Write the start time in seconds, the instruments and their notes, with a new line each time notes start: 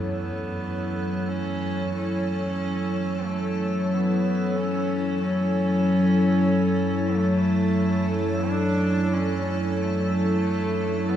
Already playing: kettle gongs F#2 E4, synth drone F#2 F#3, analog synth pad F#3 E4 A4 C#5, ambient pad A4
0.00 horsehead fiddle B3
1.29 horsehead fiddle C#4
1.94 horsehead fiddle C#4
3.26 horsehead fiddle A3
3.92 horsehead fiddle B3
4.56 horsehead fiddle C#4
5.21 horsehead fiddle C#4
7.18 horsehead fiddle A3
8.49 horsehead fiddle D4
9.13 horsehead fiddle C#4
9.80 horsehead fiddle A3
11.09 horsehead fiddle B3